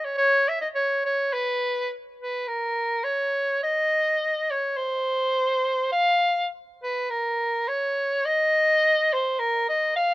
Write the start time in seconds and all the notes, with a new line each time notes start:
0.04 C#5
0.18 C#5
0.49 E5
0.62 D#5
0.75 C#5
1.06 C#5
1.33 B4
2.21 B4
2.48 A#4
3.04 C#5
3.63 D#5
4.51 C#5
4.77 C5
5.92 F5
6.83 B4
7.10 A#4
7.68 C#5
8.25 D#5
9.13 C5
9.39 A#4
9.69 D#5
9.96 F5